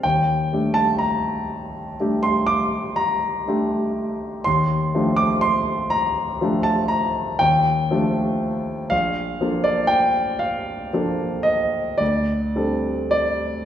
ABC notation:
X:1
M:9/8
L:1/16
Q:3/8=40
K:Fmix
V:1 name="Grand piano"
g3 a b4- b c' d'2 b6 | c'3 d' c'2 b3 a b2 g6 | f3 d g2 f4 e2 d4 d2 |]
V:2 name="Grand piano"
E,,2 [G,A,DG]6 [G,A,DG]6 [G,A,DG]4 | E,,2 [F,A,DG]6 [F,A,DG]4 E,,2 [F,A,DG]4 | B,,,2 [F,B,DA]6 [F,B,DA]4 D,,2 [G,CDA]4 |]